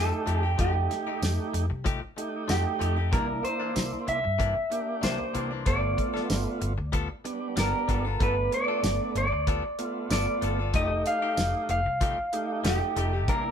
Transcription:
Already playing: fingered electric bass F2, clean electric guitar F3 A3 D#4 G4 A4, tonewheel organ A3 D#4 G4
0.12 muted clean electric guitar stroke
0.26 fingered electric bass F2, clean electric guitar F3 A3 D#4 G4, closed hi-hat
0.42 clean electric guitar A3 D#4 G4
0.58 fingered electric bass F2, clean electric guitar F3 A3 D#4 G4, tonewheel organ A3 D#4 G4, kick, closed hi-hat
0.75 muted clean electric guitar stroke
0.90 muted clean electric guitar stroke, snare, closed hi-hat
1.07 clean electric guitar A3 D#4 G4
1.22 fingered electric bass F2, muted clean electric guitar stroke, snare, closed hi-hat, tambourine
1.54 fingered electric bass F2, muted clean electric guitar stroke, closed hi-hat
1.70 fingered electric bass C2, muted clean electric guitar stroke
1.84 clean electric guitar F3 A3 D#4 G4, kick, closed hi-hat
2.01 muted clean electric guitar stroke
2.17 tonewheel organ A3 D#4 G4, muted clean electric guitar stroke, closed hi-hat
2.48 fingered electric bass F2, clean electric guitar F3 A3 D#4 G4, snare, closed hi-hat, tambourine
2.65 muted clean electric guitar stroke
2.79 fingered electric bass F2, clean electric guitar F3 A3 D#4 G4, closed hi-hat
2.96 clean electric guitar A3 D#4 G4
3.11 fingered electric bass C2, clean electric guitar C3 E3 A#3 D4 A#4, tonewheel organ A#3 D4 E4, kick, closed hi-hat
3.28 muted clean electric guitar stroke
3.43 clean electric guitar C5, muted clean electric guitar stroke, closed hi-hat
3.60 clean electric guitar E3 A#3 D4
3.75 fingered electric bass C2, muted clean electric guitar stroke, snare, closed hi-hat, tambourine
4.07 fingered electric bass C2, clean electric guitar E5, muted clean electric guitar stroke, closed hi-hat
4.24 fingered electric bass G2, muted clean electric guitar stroke
4.39 clean electric guitar C3 E3 A#3 D4, kick, closed hi-hat
4.55 muted clean electric guitar stroke
4.70 tonewheel organ A#3 D4 G4, muted clean electric guitar stroke, closed hi-hat
5.02 fingered electric bass C2, clean electric guitar C3 E3 A#3 D4 C5, snare, closed hi-hat, tambourine
5.19 muted clean electric guitar stroke
5.34 fingered electric bass C2, clean electric guitar C3 E3 A#3 D4, closed hi-hat
5.51 clean electric guitar E3 A#3 D4
5.66 fingered electric bass G1, clean electric guitar G3 B3 F4 A4 D5, tonewheel organ A3 B3 F4, kick, closed hi-hat
5.82 muted clean electric guitar stroke
5.97 muted clean electric guitar stroke, kick, closed hi-hat
6.14 clean electric guitar B3 F4 A4, snare
6.29 fingered electric bass G1, muted clean electric guitar stroke, snare, closed hi-hat, tambourine
6.61 fingered electric bass G1, muted clean electric guitar stroke, closed hi-hat
6.78 fingered electric bass D2, muted clean electric guitar stroke
6.92 clean electric guitar G3 B3 F4 A4, kick, closed hi-hat
7.09 muted clean electric guitar stroke
7.24 tonewheel organ G3 B3 D4, muted clean electric guitar stroke, closed hi-hat
7.56 fingered electric bass G1, clean electric guitar G3 B3 F4 A4 A#4, snare, closed hi-hat, tambourine
7.73 muted clean electric guitar stroke
7.88 fingered electric bass G1, clean electric guitar G3 B3 F4 A4, kick, closed hi-hat
8.05 clean electric guitar B3 F4 A4
8.20 fingered electric bass G1, clean electric guitar G3 B3 F4 A4 B4, tonewheel organ A3 B3 D4, kick, closed hi-hat
8.36 muted clean electric guitar stroke
8.52 clean electric guitar D5, muted clean electric guitar stroke, closed hi-hat
8.68 clean electric guitar B3 F4 A4
8.83 fingered electric bass G1, muted clean electric guitar stroke, snare, closed hi-hat, tambourine
9.15 fingered electric bass G1, clean electric guitar D5, muted clean electric guitar stroke, closed hi-hat
9.32 fingered electric bass D2, muted clean electric guitar stroke
9.47 clean electric guitar G3 B3 F4 A4, kick, closed hi-hat
9.64 muted clean electric guitar stroke
9.78 tonewheel organ A3 B3 F4, muted clean electric guitar stroke, closed hi-hat
10.10 fingered electric bass G1, clean electric guitar G3 B3 F4 A4 D5, snare, closed hi-hat, tambourine
10.27 muted clean electric guitar stroke
10.41 fingered electric bass G1, clean electric guitar G3 B3 F4 A4, closed hi-hat
10.59 clean electric guitar B3 F4 A4
10.74 fingered electric bass F1, clean electric guitar F3 A3 D#4 G4 D#5, tonewheel organ A3 D#4 G4, kick, closed hi-hat
10.91 muted clean electric guitar stroke
11.06 clean electric guitar F5, muted clean electric guitar stroke, closed hi-hat
11.22 clean electric guitar A3 D#4 G4
11.37 fingered electric bass F1, muted clean electric guitar stroke, snare, closed hi-hat, tambourine
11.69 fingered electric bass F1, clean electric guitar F5, muted clean electric guitar stroke, closed hi-hat
11.86 fingered electric bass C2, muted clean electric guitar stroke
12.01 clean electric guitar F3 A3 D#4 G4, kick, closed hi-hat
12.18 muted clean electric guitar stroke
12.33 tonewheel organ A3 D#4 G4, muted clean electric guitar stroke, closed hi-hat
12.64 fingered electric bass F1, clean electric guitar F3 A3 D#4 G4, snare, closed hi-hat, tambourine
12.81 muted clean electric guitar stroke
12.96 fingered electric bass F1, clean electric guitar F3 A3 D#4 G4, closed hi-hat
13.13 clean electric guitar A3 D#4 G4
13.28 fingered electric bass C2, clean electric guitar C3 E3 A#3 D4 A#4, tonewheel organ A#3 D4 E4, kick, closed hi-hat
13.45 muted clean electric guitar stroke

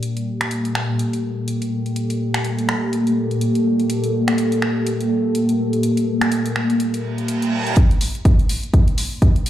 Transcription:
Already playing: analog synth pad A#3 G4
0.03 analog synth pad A4, closed hi-hat
0.17 closed hi-hat
0.41 finger snap, closed hi-hat
0.51 closed hi-hat
0.65 closed hi-hat
0.75 finger snap
0.99 closed hi-hat
1.13 closed hi-hat
1.48 closed hi-hat
1.62 closed hi-hat
1.86 closed hi-hat
1.96 closed hi-hat
2.10 closed hi-hat
2.34 finger snap, closed hi-hat
2.44 closed hi-hat
2.59 closed hi-hat
2.69 finger snap
2.93 closed hi-hat
3.07 closed hi-hat
3.31 closed hi-hat
3.41 closed hi-hat
3.55 closed hi-hat
3.80 closed hi-hat
3.90 closed hi-hat
4.04 closed hi-hat
4.28 finger snap, closed hi-hat
4.38 closed hi-hat
4.52 closed hi-hat
4.62 finger snap
4.87 closed hi-hat
5.01 closed hi-hat
5.35 closed hi-hat
5.49 closed hi-hat
5.73 closed hi-hat
5.83 closed hi-hat
5.97 closed hi-hat
6.21 finger snap, closed hi-hat
6.32 closed hi-hat
6.46 closed hi-hat
6.56 finger snap
6.70 closed hi-hat
6.80 closed hi-hat, reverse cymbal
6.94 closed hi-hat
7.18 closed hi-hat
7.28 closed hi-hat
7.42 closed hi-hat
7.67 closed hi-hat
7.76 analog synth pad A#3 G4 D5, kick, closed hi-hat
7.91 closed hi-hat
8.01 open hi-hat
8.15 closed hi-hat
8.25 kick, closed hi-hat
8.39 closed hi-hat
8.49 open hi-hat
8.63 closed hi-hat
8.74 kick, closed hi-hat
8.88 closed hi-hat
8.98 open hi-hat
9.22 kick, closed hi-hat
9.36 closed hi-hat
9.46 open hi-hat

